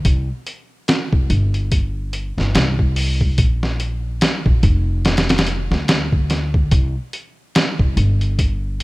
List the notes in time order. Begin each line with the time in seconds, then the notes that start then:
0.05 C2, kick, closed hi-hat
0.47 closed hi-hat
0.88 snare, closed hi-hat
1.13 C2, kick
1.30 G1, closed hi-hat
1.54 closed hi-hat
1.72 kick, closed hi-hat
2.13 closed hi-hat
2.38 G1, snare
2.55 C2, snare, closed hi-hat
2.79 kick
2.96 open hi-hat
3.21 kick
3.38 A#1, kick, closed hi-hat
3.63 snare
3.80 closed hi-hat
4.21 snare, closed hi-hat
4.46 A#1, kick
4.63 F1, kick, closed hi-hat
5.05 snare, closed hi-hat
5.17 snare, closed hi-hat
5.29 snare, closed hi-hat
5.38 snare, closed hi-hat
5.47 closed hi-hat
5.71 D2, snare
5.88 snare, closed hi-hat
6.12 kick
6.30 snare, closed hi-hat
6.54 kick
6.71 C2, kick, closed hi-hat
7.13 closed hi-hat
7.55 snare, closed hi-hat
7.79 C2, kick
7.97 G1, closed hi-hat
8.21 closed hi-hat
8.39 kick, closed hi-hat